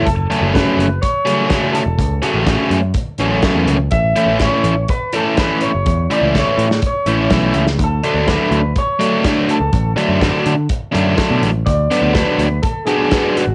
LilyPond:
<<
  \new Staff \with { instrumentName = "Clean electric guitar" } { \time 4/4 \key fis \minor \tempo 4 = 124 a'4 b'4 cis''4. a'8~ | a'8 r2. r8 | e''4 cis''4 b'8 a'8 b'8 cis''8~ | cis''8 d''8 cis''4 cis''4. r8 |
a'4 b'4 cis''4. a'8~ | a'8 r2. r8 | d''4 b'4 a'8 gis'4 fis'8 | }
  \new Staff \with { instrumentName = "Overdriven electric guitar" } { \time 4/4 \key fis \minor r8 <cis fis a cis'>8 <cis fis a cis'>8 r4 <cis fis a cis'>8 <cis fis a cis'>8 r8 | r8 <cis fis a cis'>8 <cis fis a cis'>8 r4 <cis fis a cis'>8 <cis fis a cis'>8 r8 | r8 <e a cis' e'>8 <e a cis' e'>8 r4 <e a cis' e'>8 <e a cis' e'>8 r8 | r8 <e a cis' e'>8 <e a cis' e'>8 r4 <e a cis' e'>8 <e a cis' e'>8 r8 |
r8 <d fis a d'>8 <d fis a d'>8 r4 <d fis a d'>8 <d fis a d'>8 r8 | r8 <d fis a d'>8 <d fis a d'>8 r4 <d fis a d'>8 <d fis a d'>8 r8 | r8 <d fis b d'>8 <d fis b d'>8 r4 <d fis b d'>8 <d fis b d'>8 r8 | }
  \new Staff \with { instrumentName = "Picked electric bass" } { \clef bass \time 4/4 \key fis \minor fis,,8 r16 fis,,8 r16 fis,,8 r4. r16 e,,16 | cis,8 r16 a,,8 r16 fis,8 r8 a,,8 r16 e,16 cis,8 | a,,8 r16 a,,8 r16 a,,8 r4. r16 fis,,16 | e,8 r16 cis,8 r16 a,8 r8 a,,8 b,,8 cis,8 |
d,8 r16 d,8 r16 d,8 r4. r16 cis,16 | a,,8 r16 fis,8 r16 d8 r8 fis,8 r16 b,16 a,,8 | d,8 r16 d,8 r16 d,8 r4. r16 gis,,16 | }
  \new DrumStaff \with { instrumentName = "Drums" } \drummode { \time 4/4 <hh bd>8 hh8 <hh bd sn>8 hh8 <hh bd>8 hh8 <hh bd sn>8 hh8 | <hh bd>8 hh8 <hh bd sn>8 hh8 <hh bd>8 hh8 <hh bd sn>8 hh8 | <hh bd>8 hh8 <hh bd sn>8 hh8 <hh bd>8 hh8 <hh bd sn>8 hh8 | <hh bd>8 hh8 <hh bd sn>8 hh16 sn16 <hh bd>8 hh8 <hh bd sn>8 hh16 sn16 |
<hh bd>8 hh8 <hh bd sn>8 hh8 <hh bd>8 hh8 <hh bd sn>8 hh8 | <hh bd>8 hh8 <hh bd sn>8 hh8 <hh bd>8 hh8 <hh bd sn>8 hh8 | <hh bd>8 hh8 <hh bd sn>8 hh8 <hh bd>8 hh8 <hh bd sn>8 hh8 | }
>>